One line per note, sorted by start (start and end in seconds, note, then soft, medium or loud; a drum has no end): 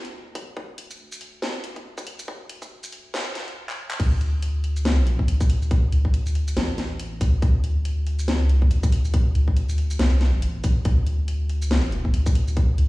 0.05 closed hi-hat soft
0.14 0.55 D2 loud
0.35 kick loud
0.35 open hi-hat medium
0.57 0.98 D2 medium
0.57 kick loud
0.78 closed hi-hat medium
0.90 shaker medium
0.99 2.27 D2 medium
1.12 shaker medium
1.21 open hi-hat medium
1.42 snare loud
1.64 closed hi-hat medium
1.76 kick medium
1.76 closed hi-hat soft
1.98 kick loud
1.98 shaker medium
2.07 open hi-hat medium
2.19 shaker medium
2.28 3.12 D2 loud
2.28 kick loud
2.49 closed hi-hat medium
2.62 kick medium
2.62 shaker medium
2.83 shaker medium
2.92 open hi-hat medium
3.14 3.57 D2 loud
3.14 snare loud
3.35 snare medium
3.35 closed hi-hat medium
3.48 closed hi-hat soft
3.69 clap medium
3.91 clap loud
4.00 5.27 D2 loud
4.00 kick loud
4.00 closed hi-hat medium
4.00 crash loud
4.21 closed hi-hat medium
4.42 closed hi-hat medium
4.64 open hi-hat medium
4.76 shaker medium
4.85 snare loud
4.85 closed hi-hat medium
5.07 closed hi-hat medium
5.19 kick medium
5.28 5.91 D2 loud
5.28 closed hi-hat medium
5.41 kick loud
5.41 shaker medium
5.50 open hi-hat loud
5.62 shaker soft
5.71 kick loud
5.71 closed hi-hat medium
5.92 6.55 D2 medium
5.92 closed hi-hat medium
6.05 kick medium
6.14 closed hi-hat medium
6.26 shaker medium
6.35 open hi-hat medium
6.48 shaker medium
6.57 7.19 A1 medium
6.57 snare loud
6.57 closed hi-hat medium
6.78 snare medium
6.78 closed hi-hat medium
7.00 closed hi-hat medium
7.21 7.41 D2 loud
7.21 kick loud
7.21 open hi-hat medium
7.21 shaker medium
7.42 8.32 D2 loud
7.42 kick loud
7.42 closed hi-hat medium
7.64 closed hi-hat medium
7.85 closed hi-hat medium
8.07 open hi-hat medium
8.19 shaker medium
8.28 snare loud
8.28 closed hi-hat medium
8.32 8.57 C#2 loud
8.49 closed hi-hat medium
8.57 8.70 C2 loud
8.62 kick medium
8.71 9.34 D2 loud
8.71 closed hi-hat medium
8.83 kick loud
8.83 shaker medium
8.92 open hi-hat medium
9.05 shaker soft
9.14 kick loud
9.14 closed hi-hat medium
9.35 9.98 D2 loud
9.35 closed hi-hat medium
9.48 kick medium
9.57 closed hi-hat medium
9.69 shaker medium
9.78 open hi-hat medium
9.90 shaker medium
9.99 10.41 C2 loud
9.99 snare loud
9.99 closed hi-hat medium
10.21 snare medium
10.21 closed hi-hat medium
10.42 10.84 A1 loud
10.42 closed hi-hat medium
10.64 kick loud
10.64 open hi-hat medium
10.64 shaker medium
10.85 12.12 D2 loud
10.85 kick loud
10.85 closed hi-hat medium
11.07 closed hi-hat medium
11.28 closed hi-hat medium
11.49 open hi-hat medium
11.62 shaker medium
11.71 snare loud
11.71 closed hi-hat medium
11.92 closed hi-hat soft
12.05 kick medium
12.14 12.77 D2 loud
12.14 closed hi-hat medium
12.26 kick loud
12.26 shaker medium
12.35 open hi-hat medium
12.48 shaker medium
12.57 kick loud
12.57 closed hi-hat medium
12.78 12.88 D2 loud
12.78 closed hi-hat soft